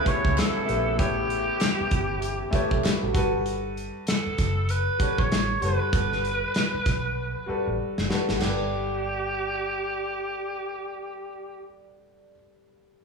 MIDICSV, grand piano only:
0, 0, Header, 1, 2, 480
1, 0, Start_track
1, 0, Tempo, 617920
1, 766, Time_signature, 4, 2, 24, 8
1, 10135, End_track
2, 0, Start_track
2, 0, Title_t, "Grand piano"
2, 0, Program_c, 0, 0
2, 0, Control_c, 0, 64, 127
2, 0, Note_on_c, 0, 57, 88
2, 0, Note_on_c, 0, 67, 76
2, 0, Note_on_c, 0, 71, 81
2, 0, Note_on_c, 0, 73, 94
2, 31, Note_off_c, 0, 57, 0
2, 31, Note_on_c, 0, 57, 69
2, 42, Note_off_c, 0, 67, 0
2, 42, Note_on_c, 0, 67, 65
2, 51, Note_off_c, 0, 71, 0
2, 51, Note_on_c, 0, 71, 61
2, 62, Note_off_c, 0, 73, 0
2, 62, Note_on_c, 0, 73, 75
2, 394, Note_off_c, 0, 57, 0
2, 400, Note_off_c, 0, 67, 0
2, 404, Note_off_c, 0, 71, 0
2, 410, Note_off_c, 0, 73, 0
2, 510, Note_on_c, 0, 57, 79
2, 523, Note_on_c, 0, 67, 68
2, 530, Note_on_c, 0, 71, 71
2, 541, Note_on_c, 0, 76, 81
2, 699, Note_off_c, 0, 57, 0
2, 705, Note_off_c, 0, 67, 0
2, 709, Note_off_c, 0, 71, 0
2, 715, Note_off_c, 0, 76, 0
2, 749, Note_on_c, 0, 57, 72
2, 757, Note_on_c, 0, 67, 63
2, 768, Note_on_c, 0, 71, 68
2, 777, Note_on_c, 0, 73, 74
2, 1443, Note_off_c, 0, 57, 0
2, 1447, Note_off_c, 0, 67, 0
2, 1453, Note_off_c, 0, 71, 0
2, 1457, Note_off_c, 0, 73, 0
2, 1947, Note_on_c, 0, 57, 89
2, 1957, Note_on_c, 0, 67, 78
2, 1969, Note_on_c, 0, 71, 76
2, 1978, Note_on_c, 0, 73, 95
2, 2312, Note_off_c, 0, 57, 0
2, 2317, Note_off_c, 0, 67, 0
2, 2323, Note_off_c, 0, 71, 0
2, 2328, Note_off_c, 0, 73, 0
2, 2431, Note_on_c, 0, 55, 91
2, 2438, Note_on_c, 0, 66, 90
2, 2450, Note_on_c, 0, 69, 87
2, 2456, Control_c, 0, 64, 0
2, 2461, Note_on_c, 0, 71, 112
2, 2595, Control_c, 0, 64, 127
2, 3214, Note_off_c, 0, 55, 0
2, 3217, Note_off_c, 0, 66, 0
2, 3223, Note_off_c, 0, 69, 0
2, 3229, Note_off_c, 0, 71, 0
2, 3871, Note_on_c, 0, 55, 68
2, 3880, Note_on_c, 0, 66, 61
2, 3889, Note_on_c, 0, 69, 63
2, 3901, Note_on_c, 0, 73, 76
2, 4234, Note_off_c, 0, 55, 0
2, 4239, Note_off_c, 0, 66, 0
2, 4243, Note_off_c, 0, 69, 0
2, 4249, Note_off_c, 0, 73, 0
2, 4355, Note_on_c, 0, 55, 70
2, 4364, Note_on_c, 0, 66, 62
2, 4374, Note_on_c, 0, 69, 69
2, 4384, Note_on_c, 0, 71, 77
2, 4541, Note_off_c, 0, 55, 0
2, 4546, Note_off_c, 0, 66, 0
2, 4551, Note_off_c, 0, 69, 0
2, 4556, Note_off_c, 0, 71, 0
2, 4597, Note_on_c, 0, 55, 68
2, 4608, Note_on_c, 0, 66, 64
2, 4619, Note_on_c, 0, 69, 61
2, 4631, Note_on_c, 0, 71, 70
2, 5288, Note_off_c, 0, 55, 0
2, 5293, Note_off_c, 0, 66, 0
2, 5299, Note_off_c, 0, 69, 0
2, 5305, Note_off_c, 0, 71, 0
2, 5797, Note_on_c, 0, 55, 77
2, 5806, Note_on_c, 0, 66, 71
2, 5816, Note_on_c, 0, 69, 75
2, 5825, Note_on_c, 0, 71, 88
2, 6157, Note_off_c, 0, 55, 0
2, 6162, Note_off_c, 0, 66, 0
2, 6167, Note_off_c, 0, 69, 0
2, 6172, Note_off_c, 0, 71, 0
2, 6282, Note_on_c, 0, 55, 83
2, 6289, Note_on_c, 0, 66, 77
2, 6302, Note_on_c, 0, 69, 77
2, 6313, Note_on_c, 0, 71, 86
2, 6460, Note_off_c, 0, 55, 0
2, 6469, Note_off_c, 0, 66, 0
2, 6472, Note_on_c, 0, 55, 74
2, 6475, Note_off_c, 0, 69, 0
2, 6481, Note_off_c, 0, 71, 0
2, 6510, Note_on_c, 0, 78, 70
2, 6537, Control_c, 0, 64, 0
2, 6553, Note_on_c, 0, 69, 67
2, 6593, Note_on_c, 0, 71, 86
2, 6682, Control_c, 0, 64, 127
2, 9555, Note_off_c, 0, 55, 0
2, 9574, Note_off_c, 0, 78, 0
2, 9595, Note_off_c, 0, 69, 0
2, 9615, Note_off_c, 0, 71, 0
2, 10135, End_track
0, 0, End_of_file